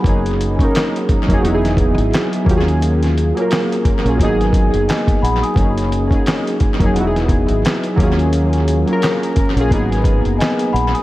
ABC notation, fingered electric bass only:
X:1
M:4/4
L:1/16
Q:"Swing 16ths" 1/4=87
K:D#m
V:1 name="Fingered electric bass" clef=bass
F,,,3 z4 E,,, =E,,,3 G,,, z2 D,,2- | D,,3 z4 A,,, G,,,3 F,,, z2 A,,, z | F,,,3 z4 E,,, =E,,,3 G,,, z2 D,,2- | D,,3 z4 A,,, G,,,3 F,,, z2 A,,, z |]